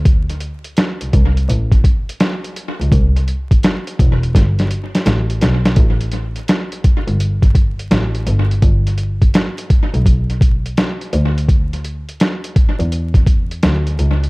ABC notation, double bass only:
X:1
M:4/4
L:1/16
Q:"Swing 16ths" 1/4=84
K:Gmix
V:1 name="Double bass" clef=bass
D,,3 z2 C,, C,,2 A,,,2 z4 z ^C,, | C,,2 z4 E,,,2 G,,,2 z2 A,,,2 B,,, z | A,,,4 z3 G,,,4- G,,, A,,,2 G,,,2 | G,,,4 z3 B,,,4- B,,, z2 D,,2- |
D,,4 z3 E,,4- E,, D,,2 ^C,,2 |]